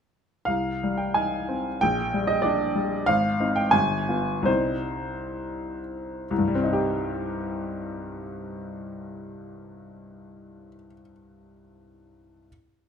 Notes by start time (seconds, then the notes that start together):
0.45 C2 F5
0.83 G3
0.98 G5
1.14 D#4 G#5
1.48 C4
1.81 A#1 G5
2.14 G3
2.27 D#5
2.42 D4 D5
2.75 G3
3.06 G#1 F5
3.40 C4 D#4
3.56 G5
3.71 G1 G#5
4.08 B3 F4
4.42 C2 G3 C4 D#4 C5
6.31 C2
6.38 G2
6.48 G3
6.55 C4
6.64 D#4
6.73 G4